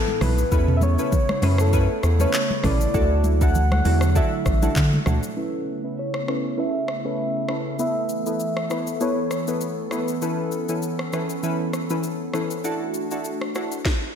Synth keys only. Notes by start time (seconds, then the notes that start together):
0.21 B3 E4 A4 B4
0.52 C#4 E4 A4 B4
0.99 C#4 E4 A4 B4
1.43 C#4 E4 A4 B4
1.73 C#4 E4 A4 B4
2.20 C#4 E4 A4 B4
2.64 C#4 E4 A4 B4
2.94 D4 E4 F#4 A4
3.41 D4 E4 F#4 A4
3.85 D4 E4 F#4 A4
4.15 D4 E4 F#4 A4
4.62 D4 E4 F#4 A4
5.06 D4 E4 F#4 A4
5.37 C#4 E4 A4 B4
5.84 C#4 E4 A4 B4
6.28 C#4 E4 A4 B4
6.58 C#4 E4 A4 B4
7.05 C#4 E4 A4 B4
7.49 C#4 E4 A4 B4
7.79 B3 E4 A4 B4
8.26 B3 E4 A4 B4
8.70 B3 E4 A4 B4
9.01 B3 E4 A4 B4
9.48 B3 E4 A4 B4
9.92 B3 E4 A4 B4
10.22 E3 C#4 E4 A4 B4
10.69 E3 C#4 E4 A4 B4
11.13 E3 C#4 E4 A4 B4
11.43 E3 C#4 E4 A4 B4
11.90 E3 C#4 E4 A4 B4
12.34 E3 C#4 E4 A4 B4
12.64 D4 E4 F#4 A4
13.11 D4 E4 F#4 A4
13.55 D4 E4 F#4 A4